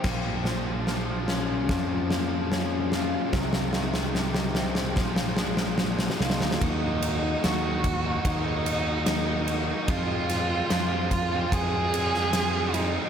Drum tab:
CC |x-------------------------------|--------------------------------|--------------------------------|--------------------------------|
RD |--------------------------------|--------------------------------|x---x---x---x---x---x---x---x---|x---x---x---x---x---x---x---x---|
SD |o---o---o---o---o---o---o---o---|o-o-o-o-o-o-o-o-o-o-o-o-o-oooooo|--------o---------------o-------|----o---o-------------o-o-------|
BD |o---------------o---------------|o---------------o---------------|o-----------o---o---------------|o-----------o---o---------------|